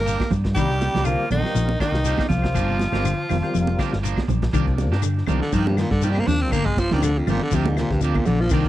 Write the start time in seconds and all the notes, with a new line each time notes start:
Already playing: G1 A#3 A#4
0.06 A#3 D4 G4, closed hi-hat, shekere
0.20 kick, snare, high conga, claves
0.31 G2, muted clean electric guitar stroke, kick, snare, closed hi-hat, high conga, low conga, shekere
0.44 muted clean electric guitar stroke, kick, snare, closed hi-hat
0.55 C2 D#3 G3 A#3 D4 G4, kick, closed hi-hat, claves, shekere
0.69 C3 D#3 D4 G4, snare
0.80 muted clean electric guitar stroke, snare, closed hi-hat, high conga, shekere
0.94 C2 A#3 D4 G4, snare, closed hi-hat, high conga, low conga
1.03 D3 F3 G3 A#3 C4 F4 A#4, muted clean electric guitar stroke, closed hi-hat, claves, shekere
1.19 muted clean electric guitar stroke
1.30 A#1 D#3 D#4, closed hi-hat, high conga, low conga, claves, shekere
1.43 G3 C4 F4 A#4, muted clean electric guitar stroke, snare
1.55 A#1 F3, snare, closed hi-hat, shekere
1.68 muted clean electric guitar stroke, high conga
1.79 D#3 A#3 D4 D#4 G4, kick, snare, closed hi-hat, claves, shekere
1.92 C2 G3 C4 F4 A#4, muted clean electric guitar stroke, snare
2.05 D#3 G3 A#3 C4 D4 F4 G4 A#4, closed hi-hat, shekere
2.18 kick, snare, high conga, claves
2.29 C2 F3 F4, muted clean electric guitar stroke, kick, snare, closed hi-hat, high conga, low conga, shekere
2.41 G3 C4 F4 A#4, muted clean electric guitar stroke, kick, snare, closed hi-hat
2.54 G1 F3 A#3 D4 G4, muted clean electric guitar stroke, kick, snare, closed hi-hat, claves, shekere
2.68 C3 F3 A#3 D4 G4
2.79 muted clean electric guitar stroke, snare, closed hi-hat, high conga, shekere
2.92 G1 G3 A#3 C4 D4 F4 G4 A#4, snare, closed hi-hat, high conga, low conga
3.04 D3, muted clean electric guitar stroke, snare, closed hi-hat, claves, shekere
3.17 muted clean electric guitar stroke
3.29 F1 D#3 G3 C4 F4 A#4, snare, open hi-hat, high conga, low conga, claves, shekere
3.42 G3 C4 F4 A#4, muted clean electric guitar stroke, closed hi-hat
3.54 F1 F3, snare, closed hi-hat, high conga, shekere
3.67 muted clean electric guitar stroke, high conga
3.78 D3 F3 A#3 D4 G4, kick, snare, closed hi-hat, claves, shekere
3.93 G1, muted clean electric guitar stroke, snare
4.03 F3 A#3 D4, muted clean electric guitar stroke, snare, closed hi-hat, shekere
4.17 kick, snare, high conga, claves
4.28 A#1 F3, muted clean electric guitar stroke, kick, closed hi-hat, low conga, shekere
4.42 muted clean electric guitar stroke, kick, snare, closed hi-hat
4.53 C2 C3 D#3 F3 A#3 D4 G4, muted clean electric guitar stroke, kick, crash, claves, shekere
4.67 C3, muted clean electric guitar stroke, kick, closed hi-hat
4.78 muted clean electric guitar stroke, snare, closed hi-hat, high conga, shekere
4.92 G2 A#3 D4 G4, snare
5.02 D3, muted clean electric guitar stroke, closed hi-hat, claves, shekere
5.18 snare
5.27 C2 C3 D#3 F3 A#3 D4 G4, closed hi-hat, high conga, low conga, claves, shekere
5.41 D3, muted clean electric guitar stroke, snare
5.52 G2 C3 D#3 F3 A#3 D4 G4, kick, closed hi-hat, shekere
5.67 G2, muted clean electric guitar stroke, closed hi-hat, high conga
5.77 A#2 D#3, muted clean electric guitar stroke, snare, closed hi-hat, claves, shekere
5.91 G2 D3, kick, snare, closed hi-hat
6.02 C3 D#3 F3 A#3 D4 G4, muted clean electric guitar stroke, closed hi-hat, shekere
6.11 G3
6.15 muted clean electric guitar stroke, high conga, claves
6.19 A#3
6.27 D#2 F3 D4, muted clean electric guitar stroke, snare, closed hi-hat, high conga, low conga, shekere
6.41 C4, closed hi-hat
6.51 G1 D3 F3 A#3 D4 G4, kick, closed hi-hat, claves, shekere
6.65 C3 G#3, muted clean electric guitar stroke, kick, closed hi-hat
6.76 F3, muted clean electric guitar stroke, kick, snare, closed hi-hat, high conga, shekere
6.91 D2 C3 D#3 F3 A#3 D4 G4, snare, low conga
7.02 D3, muted clean electric guitar stroke, closed hi-hat, claves, shekere
7.17 F2, closed hi-hat
7.26 G1 A#2 C3 D#3 F3 A#3 D4 G4, open hi-hat, high conga, low conga, claves, shekere
7.43 D3, muted clean electric guitar stroke
7.51 D2 C3 F3 A#3 D4 G4, kick, closed hi-hat, shekere
7.65 G#2, muted clean electric guitar stroke, closed hi-hat, high conga
7.77 A#2 D#3, muted clean electric guitar stroke, snare, closed hi-hat, claves, shekere
7.90 D2 G2, kick, snare, closed hi-hat
8.01 F2 F3 A#3 D4 G4, closed hi-hat, shekere
8.15 A#2, muted clean electric guitar stroke, kick, high conga, claves
8.25 A#1 D3 F3, muted clean electric guitar stroke, closed hi-hat, high conga, low conga, shekere
8.40 C3 F3 A#3 D4, snare, closed hi-hat
8.49 C2 C3 D#3 F3 A#3 D4, kick, closed hi-hat, claves, shekere
8.54 D4 G4
8.65 kick, closed hi-hat